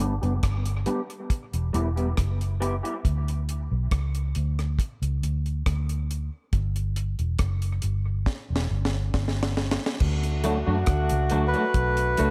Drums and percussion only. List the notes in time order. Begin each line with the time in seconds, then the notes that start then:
0.00 closed hi-hat
0.23 closed hi-hat
0.43 kick, cross-stick, closed hi-hat
0.66 closed hi-hat
0.86 closed hi-hat
1.10 closed hi-hat
1.30 kick, closed hi-hat
1.53 closed hi-hat
1.74 closed hi-hat
1.97 closed hi-hat
2.17 kick, cross-stick, closed hi-hat
2.41 closed hi-hat
2.62 closed hi-hat
2.85 closed hi-hat
3.05 kick, closed hi-hat
3.28 closed hi-hat
3.49 closed hi-hat
3.91 kick, cross-stick, closed hi-hat
4.15 closed hi-hat
4.35 closed hi-hat
4.59 cross-stick, closed hi-hat
4.79 kick, closed hi-hat
5.03 closed hi-hat
5.23 closed hi-hat
5.46 closed hi-hat
5.66 kick, cross-stick, closed hi-hat
5.89 closed hi-hat
6.11 closed hi-hat
6.53 kick, closed hi-hat
6.76 closed hi-hat
6.96 closed hi-hat
7.19 closed hi-hat
7.39 kick, cross-stick, closed hi-hat
7.62 closed hi-hat
7.82 closed hi-hat
8.26 kick, snare
8.56 snare
8.85 snare
9.14 kick, snare
9.28 snare
9.43 snare
9.57 snare
9.71 snare
9.86 snare
10.00 kick, crash
10.23 closed hi-hat
10.44 closed hi-hat
10.86 kick, cross-stick, closed hi-hat
11.09 closed hi-hat
11.30 closed hi-hat
11.54 closed hi-hat
11.74 kick, closed hi-hat
11.97 closed hi-hat
12.17 closed hi-hat